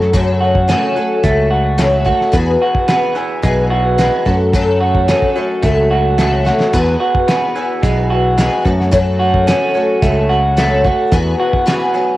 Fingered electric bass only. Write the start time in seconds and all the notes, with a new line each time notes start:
Already playing: F#2
1.24 C#2
2.33 E2
3.44 B1
4.26 F#2
5.63 C#2
6.74 E2
7.83 B1
8.65 F#2
10.02 C#2
11.12 E2